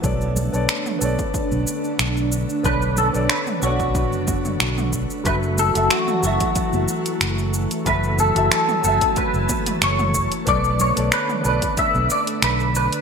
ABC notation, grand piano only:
X:1
M:4/4
L:1/16
Q:"Swing 16ths" 1/4=92
K:Bdor
V:1 name="Grand piano"
[B,Acd]3 [B,Acd]3 [B,Acd]8- [B,Acd]2 | [B,Acd]3 [B,Acd]3 [B,Acd]8- [B,Acd]2 | [F,FAe]3 [F,FAe]3 [F,FAe]8- [F,FAe]2 | [F,FAe]3 [F,FAe]3 [F,FAe]8- [F,FAe]2 |
[B,ABd]3 [B,Acd]3 [B,ABd]8- [B,ABd]2 |]